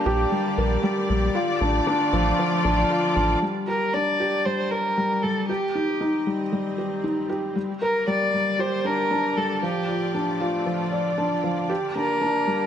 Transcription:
0.00 5.49 D3 medium
0.00 0.32 G3 medium
0.00 1.35 A#3 medium
0.00 0.10 C4 medium
0.00 1.38 D4 medium
0.00 0.06 G4 medium
0.00 2.18 G4 medium
0.00 5.49 D5 medium
0.05 0.25 A#1 loud
0.05 0.31 G4 loud
0.32 0.46 G3 medium
0.57 0.77 A#1 medium
0.57 0.82 A#4 medium
0.83 1.08 G3 medium
1.09 1.29 A#1 medium
1.09 1.34 G3 medium
1.35 1.50 F4 medium
1.58 1.81 A1 medium
1.58 3.42 A3 medium
1.58 1.85 D4 medium
1.81 4.25 F4 medium
1.87 2.12 D4 medium
2.12 2.32 A1 loud
2.12 2.28 F3 medium
2.39 2.63 F3 medium
2.64 2.84 A1 medium
2.64 2.89 D4 medium
2.90 3.15 F4 medium
3.16 3.36 A1 loud
3.16 3.41 D4 medium
3.42 3.67 G3 medium
3.51 6.32 A#3 medium
3.67 3.92 G4 medium
3.67 3.95 A#4 medium
3.71 10.46 G4 medium
3.93 4.18 D4 medium
3.93 4.47 D5 medium
4.20 4.44 G4 medium
4.45 4.60 G3 medium
4.45 4.72 C5 medium
4.71 5.24 A#4 medium
4.71 4.96 A#4 medium
4.97 5.22 G3 medium
5.22 5.48 G3 medium
5.22 5.48 A4 medium
5.48 7.56 D#3 medium
5.48 6.23 G4 medium
5.48 5.64 G4 medium
5.70 8.39 C4 medium
5.75 5.99 D#4 medium
5.79 7.56 D#5 medium
6.01 6.25 D#4 medium
6.26 6.41 G3 medium
6.52 6.77 G3 medium
6.78 7.03 G4 medium
7.04 7.29 D#4 medium
7.29 7.54 G4 medium
7.55 12.66 D3 medium
7.55 7.70 G3 medium
7.70 9.63 A#3 medium
7.82 8.06 A#4 medium
7.94 12.66 D5 medium
8.07 8.32 G3 medium
8.07 8.62 D5 medium
8.33 8.58 G3 medium
8.59 8.74 G4 medium
8.59 8.87 C5 medium
8.85 9.09 D4 medium
8.85 9.38 A#4 medium
9.11 9.36 D4 medium
9.36 9.52 G3 medium
9.36 9.62 A4 medium
9.62 11.70 A2 medium
9.62 9.87 F3 medium
9.62 10.36 G4 medium
9.88 10.13 F4 medium
9.88 12.52 F4 medium
10.00 11.69 A3 medium
10.14 10.39 D4 medium
10.40 10.65 F4 medium
10.66 10.81 F3 medium
10.92 11.07 D5 medium
11.18 11.33 D4 medium
11.44 11.68 F3 medium
11.70 11.84 G4 medium
11.88 12.66 A#3 medium
11.96 12.20 D4 medium
11.96 12.66 A#4 medium
12.11 12.66 G4 medium
12.21 12.46 D4 medium
12.47 12.62 G3 medium

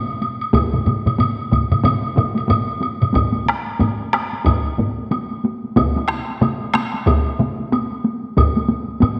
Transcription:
0.08 taiko high soft
0.22 taiko high soft
0.22 high woodblock soft
0.41 taiko high soft
0.41 high woodblock soft
0.54 taiko medium
0.54 taiko low-mid medium
0.54 taiko mid medium
0.54 taiko high medium
0.54 high woodblock medium
0.73 taiko low-mid medium
0.73 taiko mid medium
0.73 taiko high soft
0.86 taiko low-mid medium
0.86 taiko mid medium
0.86 taiko high medium
0.86 high woodblock soft
1.06 taiko low-mid medium
1.06 taiko mid medium
1.06 taiko high soft
1.06 high woodblock soft
1.18 taiko low-mid medium
1.18 taiko mid medium
1.18 taiko high medium
1.18 high woodblock medium
1.39 taiko high soft
1.52 taiko medium
1.52 taiko low-mid medium
1.52 taiko mid medium
1.52 taiko high soft
1.52 high woodblock soft
1.72 taiko low-mid medium
1.72 taiko mid medium
1.72 taiko high soft
1.72 high woodblock soft
1.84 taiko low-mid medium
1.84 taiko mid medium
1.84 taiko high medium
1.84 high woodblock medium
2.03 taiko high soft
2.16 taiko low-mid loud
2.16 taiko mid medium
2.16 taiko high medium
2.16 high woodblock soft
2.36 taiko high soft
2.36 high woodblock soft
2.48 taiko low-mid loud
2.48 taiko mid loud
2.48 taiko high medium
2.48 high woodblock medium
2.68 taiko high soft
2.81 taiko high medium
2.81 high woodblock soft
3.01 taiko low-mid medium
3.01 taiko mid medium
3.01 taiko high soft
3.01 high woodblock soft
3.13 taiko medium
3.13 taiko low-mid loud
3.13 taiko high medium
3.13 high woodblock soft
3.32 taiko high soft
3.46 taiko rim medium
3.46 taiko high soft
3.67 taiko high soft
3.79 taiko low-mid loud
3.79 taiko high medium
3.79 high woodblock soft
4.00 taiko high soft
4.13 taiko rim medium
4.13 taiko high soft
4.13 high woodblock soft
4.33 taiko high soft
4.44 taiko medium
4.44 taiko low-mid medium
4.44 taiko high medium
4.44 high woodblock medium
4.65 taiko high soft
4.78 taiko low-mid medium
4.78 taiko high soft
4.98 taiko high soft
5.11 taiko high medium
5.11 high woodblock soft
5.31 taiko high soft
5.44 taiko high medium
5.64 taiko high soft
5.76 taiko medium
5.76 taiko mid medium
5.76 taiko high medium
5.76 high woodblock soft
5.96 taiko high medium
6.08 taiko rim medium
6.29 taiko high soft
6.41 taiko mid medium
6.41 taiko high medium
6.41 high woodblock soft
6.61 taiko high soft
6.74 taiko rim medium
6.74 taiko high medium
6.74 high woodblock soft
6.94 taiko high soft
7.06 taiko loud
7.06 taiko mid medium
7.06 taiko high medium
7.06 high woodblock medium
7.27 taiko high soft
7.39 taiko mid medium
7.39 taiko high medium
7.59 taiko high soft
7.72 taiko high medium
7.72 high woodblock soft
7.92 taiko high soft
8.04 taiko high medium
8.23 taiko high soft
8.37 taiko medium
8.37 taiko low-mid loud
8.37 taiko high medium
8.37 high woodblock soft
8.56 taiko high medium
8.68 taiko high medium
8.88 taiko high soft
9.00 taiko low-mid loud
9.00 taiko high medium
9.00 high woodblock soft

